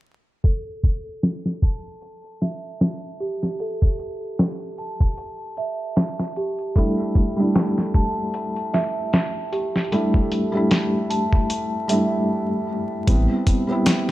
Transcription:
0.44 1.59 A4 medium
0.44 kick medium
0.44 closed hi-hat medium
0.83 kick medium
0.83 closed hi-hat medium
1.23 snare loud
1.23 closed hi-hat medium
1.46 snare soft
1.62 2.00 A5 medium
1.62 kick medium
1.62 closed hi-hat medium
2.02 closed hi-hat medium
2.24 closed hi-hat soft
2.41 3.17 E5 medium
2.41 snare soft
2.41 closed hi-hat medium
2.81 snare loud
2.81 closed hi-hat medium
3.20 3.57 G4 medium
3.20 closed hi-hat medium
3.43 snare soft
3.60 4.75 A4 medium
3.60 closed hi-hat medium
3.82 kick medium
3.99 closed hi-hat medium
4.39 snare loud
4.39 closed hi-hat medium
4.78 5.16 A5 medium
4.78 closed hi-hat medium
5.00 kick medium
5.18 closed hi-hat medium
5.57 6.33 E5 medium
5.57 closed hi-hat medium
5.96 snare loud
5.96 closed hi-hat medium
6.19 snare soft
6.36 6.73 G4 medium
6.36 closed hi-hat medium
6.59 closed hi-hat soft
6.76 7.32 G3 medium
6.76 7.33 A3 medium
6.76 7.33 D4 medium
6.76 7.33 E4 medium
6.76 7.91 A4 medium
6.76 kick medium
6.76 closed hi-hat medium
7.15 kick medium
7.15 closed hi-hat medium
7.37 9.87 G3 medium
7.37 9.88 A3 medium
7.37 9.89 D4 medium
7.41 9.89 E4 medium
7.55 snare loud
7.55 closed hi-hat medium
7.78 snare soft
7.94 8.32 A5 medium
7.94 kick medium
7.94 closed hi-hat medium
8.34 closed hi-hat medium
8.56 closed hi-hat soft
8.73 9.49 E5 medium
8.73 snare medium
8.73 closed hi-hat medium
9.13 snare loud
9.13 closed hi-hat medium
9.52 9.88 G4 medium
9.52 closed hi-hat medium
9.76 snare soft
9.92 10.48 G3 medium
9.92 10.49 A3 medium
9.92 10.49 D4 medium
9.92 10.50 E4 medium
9.92 11.07 A4 medium
9.92 closed hi-hat medium
10.14 kick medium
10.32 closed hi-hat medium
10.52 11.85 G3 medium
10.52 11.86 A3 medium
10.52 11.87 D4 medium
10.57 11.87 E4 medium
10.71 snare loud
10.71 closed hi-hat medium
11.10 11.48 A5 medium
11.10 closed hi-hat medium
11.32 kick medium
11.50 closed hi-hat medium
11.88 13.03 G3 medium
11.88 13.04 A3 medium
11.88 13.04 D4 medium
11.88 12.29 E5 medium
11.88 closed hi-hat medium
11.93 13.05 E4 medium
13.07 13.27 A1 medium
13.07 13.64 G3 medium
13.07 13.64 B3 medium
13.07 13.65 C4 medium
13.07 13.65 E4 medium
13.07 kick loud
13.07 closed hi-hat medium
13.47 kick medium
13.47 closed hi-hat medium
13.67 14.11 G3 medium
13.67 14.11 B3 medium
13.67 14.11 C4 medium
13.72 14.11 E4 medium
13.86 snare loud
13.86 closed hi-hat medium

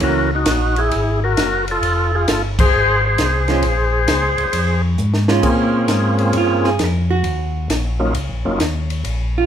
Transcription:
0.00 0.45 C#2 medium
0.00 0.28 E3 medium
0.00 0.29 A#3 medium
0.00 0.29 C#4 medium
0.00 0.31 F#4 medium
0.00 0.31 A#4 loud
0.00 ride medium
0.35 0.76 D#4 medium
0.35 0.80 F#4 medium
0.46 0.91 A#1 medium
0.46 snare medium
0.46 hi-hat pedal medium
0.46 ride medium
0.76 1.20 E4 medium
0.76 1.20 G#4 medium
0.76 ride soft
0.91 1.36 G#1 medium
0.91 ride medium
1.24 1.66 F#4 medium
1.24 1.65 A#4 loud
1.37 1.81 F#1 medium
1.37 snare medium
1.37 hi-hat pedal medium
1.37 ride medium
1.68 2.12 F4 medium
1.68 2.16 A4 loud
1.68 ride soft
1.82 2.26 F1 medium
1.82 ride medium
2.15 2.28 F4 medium
2.15 2.29 G#4 medium
2.28 2.72 G1 medium
2.28 2.42 F4 medium
2.28 2.42 A4 loud
2.28 snare medium
2.28 hi-hat pedal medium
2.28 ride medium
2.59 3.01 G#4 medium
2.59 3.05 C5 loud
2.59 kick medium
2.59 crash medium
2.73 3.17 G#1 medium
3.06 4.82 G#4 medium
3.06 4.81 C5 medium
3.18 3.62 C2 medium
3.18 snare medium
3.18 hi-hat pedal soft
3.18 ride medium
3.48 3.62 G#3 medium
3.48 3.63 C#4 medium
3.48 3.63 F4 medium
3.48 snare soft
3.48 ride soft
3.62 4.07 A#1 medium
3.62 ride medium
4.08 4.36 C#2 medium
4.08 snare medium
4.08 hi-hat pedal medium
4.08 ride medium
4.38 4.46 C#2 soft
4.38 ride soft
4.53 4.97 F2 medium
4.53 ride medium
4.98 5.43 G#2 medium
4.98 hi-hat pedal soft
5.14 snare medium
5.28 5.42 G#3 medium
5.28 5.43 C#4 medium
5.28 5.43 F4 medium
5.28 snare medium
5.42 5.87 A#2 medium
5.42 6.70 A#3 medium
5.42 6.70 C4 medium
5.42 6.70 C#4 medium
5.42 6.70 F4 medium
5.42 6.70 G#4 medium
5.42 kick medium
5.42 crash medium
5.88 6.33 G#2 medium
5.88 snare medium
5.88 hi-hat pedal medium
5.88 ride medium
6.18 ride soft
6.33 6.78 G2 medium
6.33 ride medium
6.38 6.66 F4 medium
6.64 6.80 G#4 medium
6.64 snare soft
6.78 7.23 F2 medium
6.78 snare medium
6.78 hi-hat pedal soft
6.78 ride medium
6.84 7.11 A#4 medium
7.10 8.12 F#4 medium
7.23 7.68 D#2 medium
7.23 ride medium
7.68 8.13 A#1 medium
7.68 snare medium
7.68 hi-hat pedal medium
7.68 ride medium
7.99 8.13 F#3 medium
7.99 8.14 A#3 medium
7.99 8.14 C#4 medium
7.99 8.14 D#4 medium
7.99 8.14 F4 medium
8.14 8.29 C#2 medium
8.14 ride medium
8.29 8.45 A#1 medium
8.45 8.59 F#1 medium
8.45 8.59 F#3 medium
8.45 8.59 A#3 medium
8.45 8.59 C#4 medium
8.45 8.59 D#4 medium
8.45 8.59 F4 medium
8.59 9.04 D#2 medium
8.59 snare medium
8.59 hi-hat pedal medium
8.59 ride medium
8.90 ride soft
9.04 9.46 A#1 medium
9.04 ride medium
9.38 9.46 F4 medium

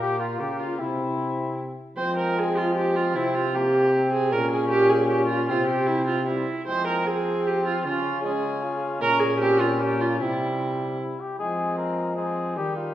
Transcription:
0.00 0.39 A#2 medium
0.00 0.39 A#3 medium
0.00 0.22 G4 loud
0.00 0.20 G4 medium
0.20 0.42 F4 medium
0.20 0.41 F4 medium
0.39 0.81 C#3 medium
0.39 0.80 A#3 medium
0.39 0.61 G4 medium
0.39 0.59 G4 medium
0.59 0.78 F4 medium
0.59 0.82 F4 medium
0.79 1.78 C3 medium
0.79 1.78 C4 medium
0.79 1.57 E4 medium
0.79 1.59 E4 medium
1.97 3.17 F3 medium
1.97 3.11 G#3 medium
1.97 2.34 C4 medium
1.97 2.16 C5 loud
2.17 2.40 A#4 medium
2.38 3.14 C4 medium
2.38 2.59 G#4 loud
2.57 2.75 F4 medium
2.75 2.97 G4 medium
2.96 3.17 F4 medium
3.14 4.33 C3 medium
3.14 3.53 C4 medium
3.14 3.54 C4 medium
3.14 3.36 E4 medium
3.35 3.56 F4 loud
3.54 3.92 A#3 medium
3.54 4.35 C4 medium
3.54 4.12 G4 loud
3.93 4.33 C4 medium
4.13 4.34 G#4 loud
4.32 5.51 A#2 medium
4.32 5.10 C#4 loud
4.32 5.49 C#4 medium
4.32 4.51 A#4 loud
4.51 4.69 G#4 loud
4.70 4.91 G4 loud
4.90 5.09 G#4 loud
5.09 5.51 C#4 medium
5.09 5.27 G4 medium
5.27 5.47 F4 medium
5.49 6.48 C3 medium
5.49 6.26 C4 medium
5.49 6.28 C4 medium
5.49 5.67 F4 loud
5.68 5.88 G4 medium
5.87 6.06 E4 loud
6.07 6.26 F4 medium
6.27 6.47 G3 medium
6.27 6.48 C4 medium
6.27 6.66 E4 medium
6.67 7.86 F3 medium
6.67 7.07 G#3 medium
6.67 7.04 C4 medium
6.67 6.87 C5 loud
6.87 7.08 A#4 medium
7.06 7.84 C4 medium
7.06 7.87 C4 medium
7.06 7.48 G#4 loud
7.47 7.65 G4 medium
7.66 7.84 F4 medium
7.85 9.01 C#3 medium
7.85 8.23 C#4 medium
7.85 8.24 C#4 medium
7.85 8.22 F4 medium
8.23 8.64 G#3 medium
8.23 9.01 C#4 medium
8.23 8.81 G#4 loud
8.63 9.02 F4 medium
9.01 10.22 A#2 medium
9.01 9.40 C#4 medium
9.01 10.23 C#4 medium
9.01 9.21 A#4 loud
9.20 9.40 G#4 loud
9.40 9.81 C4 medium
9.40 9.61 G4 loud
9.60 9.83 F4 loud
9.80 10.20 A#3 medium
9.80 10.02 G4 loud
10.00 10.20 F4 medium
10.20 11.19 C3 medium
10.20 10.98 G3 medium
10.20 11.20 C4 medium
10.20 10.98 E4 medium
11.00 11.22 E4 medium
11.20 11.38 G4 medium
11.39 12.59 F3 medium
11.39 12.14 G#3 medium
11.39 12.14 C4 medium
11.39 11.77 G#4 medium
11.78 12.15 A#4 medium
12.16 12.58 G#3 medium
12.16 12.58 C4 medium
12.16 12.55 G#4 medium
12.56 12.94 D#3 medium
12.56 12.94 G3 medium
12.56 12.94 D#4 medium
12.56 12.75 G4 medium
12.76 12.94 F4 medium

